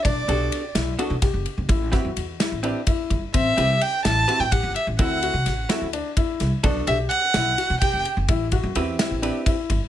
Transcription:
<<
  \new Staff \with { instrumentName = "Violin" } { \time 7/8 \key a \dorian \tempo 4 = 128 d''4. r2 | r2. r8 | e''4 g''8 a''8. g''16 fis''8 e''8 | fis''4. r2 |
r8 e''8 fis''4. g''8 r8 | r2. r8 | }
  \new Staff \with { instrumentName = "Hollow-body jazz guitar" } { \time 7/8 \key a \dorian r8 <b d' fis' a'>8 r4 <b d' fis' a'>8 r4 | r8 <c' e' g' b'>8 r4 <c' e' g' b'>8 r4 | r8 <c' e' g' b'>8 r4 <c' e' g' b'>8 r4 | <c' e' fis' a'>8 r4 <c' e' fis' a'>8 r4. |
<b d' fis' a'>8 r2. | r4 <c' e' g' b'>4 <c' e' g' b'>8 r4 | }
  \new Staff \with { instrumentName = "Grand piano" } { \time 7/8 \key a \dorian d'8 g'4 e'8 fis'8 g'4 | e'8 fis'4 e'8 d'8 e'4 | c'8 g'4 e'8 fis'8 g'4 | e'8 fis'4 e'8 d'8 e'4 |
d'8 g'4 e'8 fis'8 g'4 | e'8 fis'4 e'8 d'8 e'4 | }
  \new Staff \with { instrumentName = "Upright bass" } { \clef bass \time 7/8 \key a \dorian b,,8 b,,8 r8 b,,8 r16 b,8 fis,,16 r16 fis,,16 | a,,8. fis,16 e,8 r16 a,,8 r8. g,,16 r16 | a,,8 c,8 r8 a,,8 r16 a,8 g,,16 r16 a,,16 | d,8. c16 a,,8 r16 d,8 r8. c,16 r16 |
b,,8 b,,8 r8 b,,8 r16 b,8 fis,,16 r16 fis,,16 | a,,8. fis,16 e,8 r16 a,,8 r8. g,,16 r16 | }
  \new DrumStaff \with { instrumentName = "Drums" } \drummode { \time 7/8 <bd cymr>8 cymr8 cymr8 <cymr sn>8 cymr8 <bd cymr sn>8 cymr8 | <bd cymr>8 <bd cymr sn>8 cymr8 <cymr sn>8 cymr8 <bd cymr>8 <bd cymr>8 | <bd cymr>8 cymr8 cymr8 <cymr sn>8 cymr8 <bd cymr>8 cymr8 | <bd cymr>8 cymr8 <cymr sn>8 <cymr sn>8 cymr8 <bd cymr>8 <cymr sn>8 |
<bd cymr>8 cymr8 cymr8 <cymr sn>8 cymr8 <bd cymr>8 cymr8 | <bd cymr>8 <bd cymr>8 cymr8 <cymr sn>8 cymr8 <bd cymr>8 <bd cymr>8 | }
>>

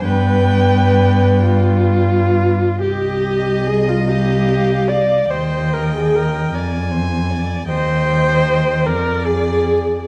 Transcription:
<<
  \new Staff \with { instrumentName = "Violin" } { \time 6/8 \key c \minor \tempo 4. = 48 b2~ b8. r16 | ees''2. | g''4. aes''4. | g''4. d''4. | }
  \new Staff \with { instrumentName = "Violin" } { \time 6/8 \key c \minor g''2~ g''8 r8 | ees''4. f''4. | ees''4. d''8 c''8 d''8 | ees''4. d''4. | }
  \new Staff \with { instrumentName = "Viola" } { \time 6/8 \key c \minor b'4. f'4. | g'4 aes'16 f'16 g'4 d''8 | c''8 bes'16 aes'16 bes'8 r4. | c''4. bes'8 aes'4 | }
  \new Staff \with { instrumentName = "Cello" } { \clef bass \time 6/8 \key c \minor g,2~ g,8. r16 | c,2. | ees,4. f,4. | ees,4. f,4. | }
>>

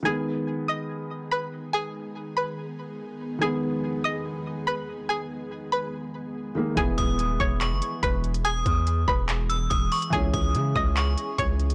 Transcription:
<<
  \new Staff \with { instrumentName = "Synth bell" } { \time 4/4 \key gis \minor \tempo 4 = 143 r1 | r1 | r1 | r1 |
r8 dis'''4. cis'''4 r4 | dis'''4 r4. e'''8 dis'''8 cis'''8 | r8 dis'''4. cis'''4 r4 | }
  \new Staff \with { instrumentName = "Synth pluck" } { \time 4/4 \key gis \minor <gis' gis''>4 r8 <dis'' dis'''>4. <b' b''>4 | <gis' gis''>4 r8 <b' b''>2~ <b' b''>8 | <gis' gis''>4 r8 <dis'' dis'''>4. <b' b''>4 | <gis' gis''>4 r8 <b' b''>2~ <b' b''>8 |
<gis' gis''>4 r8 <cis'' cis'''>4. <b' b''>4 | <gis' gis''>4 r8 <b' b''>2~ <b' b''>8 | <gis' gis''>4 r8 <dis'' dis'''>4. <cis'' cis'''>4 | }
  \new Staff \with { instrumentName = "Ambient pad" } { \time 4/4 \key gis \minor << { <gis b gis'>1~ | <gis b gis'>1~ | <gis b gis'>1~ | <gis b gis'>1~ |
<gis b gis'>1~ | <gis b gis'>1 | <gis cis' gis'>1 | } \\ { dis1~ | dis1~ | dis1~ | dis1 |
e1~ | e1~ | e1 | } >> }
  \new Staff \with { instrumentName = "Grand piano" } { \clef bass \time 4/4 \key gis \minor <dis gis b>1~ | <dis gis b>1 | <dis gis b>1~ | <dis gis b>2.~ <dis gis b>8 <dis gis ais>8 |
<e gis b>1~ | <e gis b>1 | <e gis cis'>1 | }
  \new Staff \with { instrumentName = "808-style bass" } { \clef bass \time 4/4 \key gis \minor r1 | r1 | r1 | r1 |
e,,8 dis,,4 e,,8. fis,,16 r8 e,,4~ | e,,8 e,4 e,,4. e,,8 r8 | cis,8 cis,8 cis8 cis,4 r8 cis,4 | }
  \new DrumStaff \with { instrumentName = "Drums" } \drummode { \time 4/4 r4 r4 r4 r4 | r4 r4 r4 r4 | r4 r4 r4 r4 | r4 r4 r4 r4 |
<hh bd>8 <hh bd>8 hh8 bd8 <hc hh>8 hh8 <hh bd>8 hh16 hh16 | hh8 <hh bd>8 hh8 bd8 <hc hh>8 hh8 <hh bd>8 <hh hho>16 hh16 | <hh bd>8 <hh bd>8 hh8 bd8 <hc hh>8 hh8 <hh bd>8 hh16 hh16 | }
>>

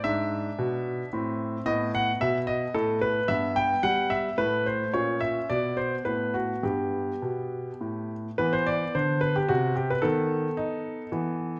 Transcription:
<<
  \new Staff \with { instrumentName = "Grand piano" } { \time 3/4 \key e \minor \tempo 4 = 110 e''2. | dis''8 fis''8 e''8 dis''8 a'8 b'8 | e''8 g''8 fis''8 e''8 b'8 c''8 | cis''8 e''8 d''8 c''8 b'8 fis'8 |
g'2~ g'8 r8 | b'16 c''16 d''8 c''8 b'16 g'16 fis'8 g'16 b'16 | a'2. | }
  \new Staff \with { instrumentName = "Grand piano" } { \clef bass \time 3/4 \key e \minor << { d'2 c'4 | b2. | b2 a4 | cis'4 b4 b4 |
b2. | b2. | b2 b4 | } \\ { gis,4 b,4 a,4 | a,4 b,4 a,4 | g,4 g4 a,4 | ais,4 b,4 a,4 |
g,4 b,4 a,4 | e4 d4 c4 | dis4 dis'4 e4 | } >> }
>>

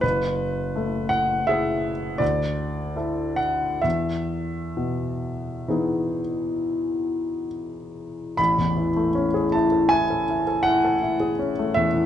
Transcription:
\new Staff \with { instrumentName = "Grand piano" } { \time 5/4 \key e \major \tempo 4 = 78 << { b'4. fis''8 e''4 d''4. fis''8 | e''1 r4 | \key a \major b''4. a''8 gis''4 fis''4. e''8 | } \\ { fis,,4 a4 <e' gis'>4 d,4 <e' a'>4 | e,4 b,4 <e b dis' gis'>2. | a,,16 e,16 e16 a16 cis'16 gis'16 e'16 a'16 e'16 a'16 e'16 a'16 e'16 a'16 e'16 gis'16 cis'16 a16 e,16 e16 | } >> }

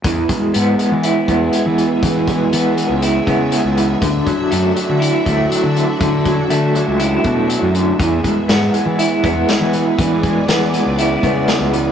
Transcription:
<<
  \new Staff \with { instrumentName = "String machine" } { \time 4/4 \key e \mixolydian \tempo 4 = 121 << { e''1~ | e''1~ | e''1~ | e''1~ |
e''1 | d''1 | } \\ { <b gis'>1~ | <b gis'>1 | <d' fis'>1~ | <d' fis'>1 |
<b gis'>1~ | <b gis'>1 | } >> }
  \new Staff \with { instrumentName = "Clean electric guitar" } { \clef bass \time 4/4 \key e \mixolydian e8 gis8 b8 gis8 e'8 b8 gis8 e8 | e8 gis8 b8 gis8 e'8 b8 gis8 e8 | d8 fis8 a8 fis8 e'8 a8 fis8 d8 | d8 fis8 a8 fis8 e'8 a8 fis8 d8 |
e8 gis8 b8 gis8 e'8 b8 gis8 e8 | e8 gis8 b8 gis8 e'8 b8 gis8 e8 | }
  \new Staff \with { instrumentName = "Fingered electric bass" } { \clef bass \time 4/4 \key e \mixolydian e,8 r8 gis,8 r16 e8 r16 e,8 r16 e8 r16 | e4 e8. cis,8. cis8. cis,8. | d,8 r8 fis,8 r16 d8 r16 d,8 r16 d8 r16 | d4 d8. cis,8. b,8. fis,8. |
e,8 r8 gis,8 r16 e8 r16 e,8 r16 e8 r16 | e4 e8. cis,8. cis8. cis,8. | }
  \new DrumStaff \with { instrumentName = "Drums" } \drummode { \time 4/4 <hh bd>8 <hh bd>8 hh8 hh8 hh8 <hh bd>8 hh8 hh8 | <hh bd>8 <hh bd>8 hh8 hh8 hh8 <hh bd>8 hh8 hh8 | <hh bd>8 <hh bd>8 hh8 hh8 hh8 <hh bd>8 hh8 hh8 | <hh bd>8 <hh bd>8 hh8 hh8 hh8 <hh bd>8 hh8 hh8 |
<hh bd>8 <hh bd>8 <hh sn>8 hh8 hh8 <hh bd>8 <hh sn>8 hh8 | <hh bd>8 <hh bd>8 <hh sn>8 hh8 hh8 <hh bd>8 <hh sn>8 hh8 | }
>>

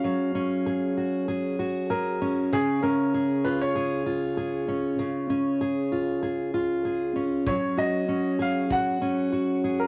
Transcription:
<<
  \new Staff \with { instrumentName = "Upright piano" } { \time 4/4 \key fis \major \tempo 4 = 97 eis''2~ eis''8 r8 ais'4 | gis'8 ais'4 b'16 cis''2~ cis''16~ | cis''2. r4 | cis''8 dis''4 eis''8 fis''4.~ fis''16 ais'16 | }
  \new Staff \with { instrumentName = "Steel-string acoustic guitar" } { \time 4/4 \key fis \major <fis cis' fis' gis'>8 cis'8 gis'8 fis'8 gis'8 fis'8 gis'8 cis'8 | cis8 cis'8 gis'8 eis'8 gis'8 eis'8 gis'8 cis'8 | cis8 cis'8 gis'8 eis'8 gis'8 eis'8 gis'8 cis'8 | fis8 fis'8 cis'8 gis'8 fis'8 cis'8 fis'8 gis'8 | }
  \new DrumStaff \with { instrumentName = "Drums" } \drummode { \time 4/4 r4 r4 r4 r4 | r4 r4 r4 r4 | r4 r4 r4 r4 | bd4 r4 bd4 r4 | }
>>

